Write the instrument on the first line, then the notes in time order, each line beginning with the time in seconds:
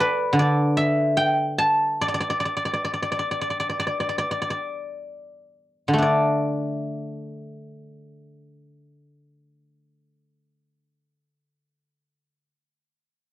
guzheng
Already playing: A4 D5
0.00 B4
0.33 D3
0.39 D5
0.77 E5
1.17 G5
1.58 A5
2.01 D5
2.08 D5
2.14 D5
2.20 D5
2.30 D5
2.40 D5
2.45 D5
2.57 D5
2.65 D5
2.73 D5
2.85 D5
2.94 D5
3.02 D5
3.12 D5
3.19 D5
3.31 D5
3.41 D5
3.50 D5
3.60 D5
3.69 D5
3.80 D5
3.87 D5
4.00 D5
4.09 D5
4.18 D5
4.31 D5
4.42 D5
4.50 D5
5.88 D3
5.94 A3
5.98 D4
6.02 D5